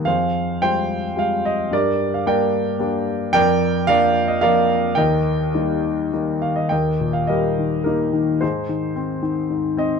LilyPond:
<<
  \new Staff \with { instrumentName = "Grand piano" } { \time 3/4 \key ees \major \tempo 4 = 109 << { f''4 g''4 f''8 ees''8 | d''8. f''16 g''4 r4 | g''4 f''8. ees''16 f''4 | g''2 r8 f''16 ees''16 |
g''8. f''16 ees''4 bes'4 | c''4 r4. ees''8 | } \\ { <aes' c''>4 c''4. r8 | <g' bes'>4 <bes' d''>4. r8 | <bes' d''>4 <bes' d''>4 <bes' d''>4 | <bes' ees''>2 r4 |
<bes' ees''>4 <g' bes'>4 <ees' g'>4 | <ees' aes'>4. r4. | } >> }
  \new Staff \with { instrumentName = "Grand piano" } { \clef bass \time 3/4 \key ees \major f,4 <g aes f'>4 <g aes f'>4 | g,4 <g bes d'>4 <g bes d'>4 | f,4 <f bes d'>4 <f bes d'>4 | ees,4 <g bes ees'>4 <g bes ees'>4 |
ees,8 bes,8 g8 ees8 bes8 ees8 | aes,8 ees8 c'8 ees8 aes,8 c'8 | }
>>